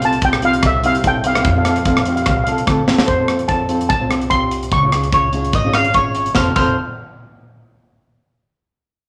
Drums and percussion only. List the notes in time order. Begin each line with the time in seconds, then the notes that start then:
0.02 closed hi-hat
0.13 closed hi-hat
0.22 kick, closed hi-hat
0.33 cross-stick
0.42 closed hi-hat
0.53 closed hi-hat
0.63 kick, cross-stick, closed hi-hat
0.84 closed hi-hat
0.95 closed hi-hat
1.04 kick, closed hi-hat
1.24 closed hi-hat
1.35 cross-stick, closed hi-hat
1.45 kick, closed hi-hat
1.65 cross-stick, closed hi-hat
1.76 closed hi-hat
1.85 kick, closed hi-hat
1.97 cross-stick
2.06 closed hi-hat
2.17 closed hi-hat
2.26 kick, cross-stick, closed hi-hat
2.47 closed hi-hat
2.58 closed hi-hat
2.67 kick, cross-stick, closed hi-hat
2.88 snare
2.98 snare
3.08 kick, closed hi-hat
3.28 cross-stick, closed hi-hat
3.39 closed hi-hat
3.48 kick, closed hi-hat
3.69 closed hi-hat
3.81 closed hi-hat
3.90 kick, closed hi-hat
4.11 cross-stick, closed hi-hat
4.22 closed hi-hat
4.31 kick, closed hi-hat
4.51 closed hi-hat
4.63 closed hi-hat
4.72 kick, closed hi-hat
4.92 cross-stick, closed hi-hat
5.03 closed hi-hat
5.12 kick, closed hi-hat
5.33 closed hi-hat
5.45 closed hi-hat
5.53 kick, closed hi-hat
5.73 cross-stick, closed hi-hat
5.84 closed hi-hat
5.94 kick, closed hi-hat
6.15 closed hi-hat
6.26 closed hi-hat
6.35 kick, snare
6.56 kick, crash